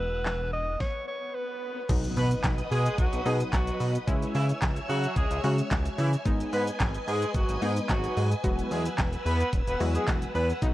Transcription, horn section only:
2.17 2.29 B3 medium
2.17 2.29 B4 medium
2.71 2.95 G#3 medium
2.71 2.94 G#4 medium
2.98 3.22 F#3 medium
2.98 3.21 F#4 medium
3.26 3.38 G#3 medium
3.26 3.38 G#4 medium
3.53 3.93 F#3 medium
3.53 3.92 F#4 medium
4.35 4.47 E3 medium
4.35 4.47 E4 medium
4.89 5.13 F#3 medium
4.89 5.12 F#4 medium
5.17 5.40 G#3 medium
5.17 5.40 G#4 medium
5.44 5.57 F#3 medium
5.44 5.56 F#4 medium
5.98 6.11 E3 medium
5.98 6.11 E4 medium
6.53 6.66 B3 medium
6.53 6.65 B4 medium
7.08 7.31 G#3 medium
7.08 7.31 G#4 medium
7.35 7.58 F#3 medium
7.35 7.58 F#4 medium
7.62 7.75 G#3 medium
7.62 7.74 G#4 medium
7.90 8.29 F#3 medium
7.90 8.29 F#4 medium
8.71 8.84 G#3 medium
8.71 8.84 G#4 medium
9.26 9.49 B3 medium
9.26 9.49 B4 medium
9.67 9.79 B3 medium
9.67 9.78 B4 medium
9.95 10.06 G#3 medium
9.95 10.06 G#4 medium
10.35 10.48 B3 medium
10.35 10.47 B4 medium

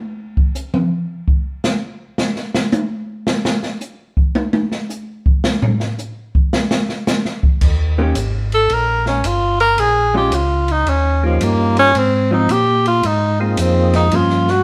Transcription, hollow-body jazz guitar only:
7.98 8.14 D#3 medium
7.98 8.14 A#3 medium
7.98 8.15 C#4 medium
7.98 8.15 G4 medium
10.14 10.31 G#3 medium
10.14 10.31 C#4 medium
10.14 10.31 F4 medium
12.31 12.48 F3 medium
12.31 12.48 C4 medium
12.31 12.48 D#4 medium
14.13 14.45 F3 medium
14.13 14.45 A#3 medium
14.13 14.46 C#4 medium

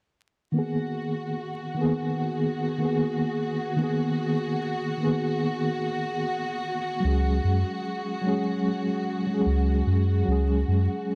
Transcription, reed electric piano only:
0.52 1.71 D#3 medium
0.52 1.72 A#3 medium
0.57 1.73 B3 medium
0.57 1.74 G#4 medium
1.75 2.74 D#3 medium
1.75 2.75 A#3 medium
1.79 2.76 B3 medium
1.79 2.77 G#4 loud
2.78 3.74 D#3 medium
2.78 3.75 A#3 medium
2.78 3.76 B3 medium
2.85 3.77 G#4 medium
3.76 4.95 D#3 medium
3.76 4.96 A#3 medium
3.81 4.97 B3 medium
3.81 4.99 G#4 medium
4.98 6.97 D#3 medium
4.98 6.99 A#3 medium
5.03 7.00 B3 medium
5.03 7.01 G#4 medium
7.00 8.19 F#3 medium
7.00 8.20 G#3 medium
7.05 8.21 C#4 medium
7.05 8.22 G#4 medium
8.22 9.22 F#3 medium
8.22 9.23 G#3 medium
8.27 9.24 C#4 medium
8.27 9.25 G#4 loud
9.27 10.22 F#3 medium
9.27 10.24 G#3 medium
9.31 10.25 C#4 medium
9.31 10.26 G#4 medium
10.25 11.15 F#3 medium
10.25 11.15 G#3 medium
10.30 11.15 C#4 medium
10.30 11.15 G#4 medium

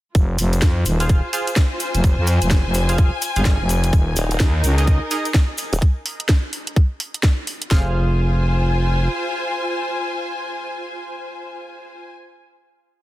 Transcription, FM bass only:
0.15 0.37 F1 loud
0.39 0.61 F1 loud
0.62 0.84 F2 loud
0.86 1.21 D#1 loud
1.95 2.16 F1 loud
2.18 2.40 F2 loud
2.42 2.63 F1 loud
2.65 3.10 F1 loud
3.36 3.58 G1 loud
3.60 3.91 F1 medium
3.93 4.15 D#1 loud
4.40 4.62 D#2 loud
4.64 4.99 C#2 loud
7.71 9.09 F1 loud

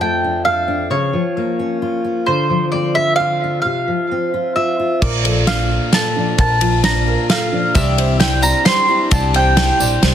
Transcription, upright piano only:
5.02 5.93 A#4 medium
5.25 5.92 A4 medium
5.48 6.14 D4 medium
5.93 6.84 A4 medium
6.16 6.83 D4 medium
6.38 7.06 A#4 medium
6.61 7.53 F4 medium
6.84 7.51 D4 medium
7.07 7.76 A#4 medium
7.30 7.75 A4 medium
7.52 7.75 D4 medium
7.75 8.42 D5 loud
7.97 8.64 C5 medium
8.20 8.87 E4 medium
8.43 9.10 D5 medium
8.66 9.33 C5 medium
8.89 9.56 E4 medium
9.12 9.79 D5 medium
9.35 10.01 C5 medium
9.57 10.14 E4 medium
9.80 10.14 D5 medium
10.02 10.14 C5 medium

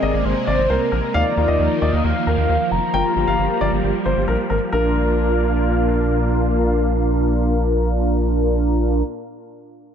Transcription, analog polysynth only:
0.00 0.35 C4 medium
0.00 0.35 G#4 medium
0.00 0.35 A#4 medium
1.14 1.34 D#4 medium
1.14 1.34 F4 medium
1.14 1.34 A#4 medium
1.37 2.14 D#4 medium
1.37 2.14 F4 medium
1.37 2.14 A#4 medium
2.94 3.13 F4 medium
2.94 3.13 G4 medium
2.94 3.13 A#4 medium
3.16 3.93 F4 medium
3.16 3.93 G4 medium
3.16 3.93 A#4 medium
4.73 9.02 D4 medium
4.73 9.02 F4 medium
4.73 9.02 A#4 medium

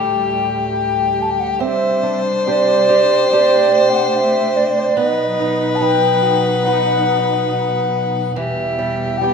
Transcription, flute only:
0.00 0.68 G5 medium
0.69 1.23 G5 medium
1.22 1.32 A5 medium
1.30 1.41 G5 medium
1.39 1.50 F#5 medium
1.48 1.61 G5 medium
1.59 2.20 E5 medium
2.46 3.27 D5 medium
3.31 3.91 D5 medium
3.89 3.95 G5 medium
3.93 4.08 F#5 medium
4.08 4.17 F#5 medium
4.15 4.57 E5 medium
4.56 4.66 D5 medium
4.64 4.71 E5 medium
4.69 4.81 D5 medium
4.80 4.86 C5 soft
4.84 4.99 D5 medium
4.98 5.76 D#5 medium
5.75 5.83 A5 medium
5.82 6.39 G5 medium
6.65 7.47 F#5 loud
7.50 8.32 F#5 medium
8.36 9.19 E5 medium
9.17 9.34 G5 medium

